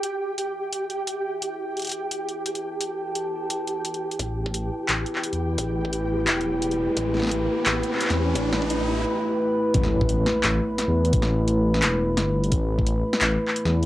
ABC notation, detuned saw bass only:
X:1
M:4/4
L:1/16
Q:"Swing 16ths" 1/4=173
K:Ephr
V:1 name="Detuned saw bass" clef=bass
z16 | z16 | z16 | A,,,6 z2 A,,,2 z3 E,,3 |
A,,,8 E,,,6- E,,, z | A,,,6 z2 A,,,2 z3 E,,3 | A,,,8 z8 | A,,,6 z2 A,,,2 z3 E,,3 |
A,,,8 E,,,4 G,,,4 | A,,,6 z2 A,,,2 z3 E,,3 |]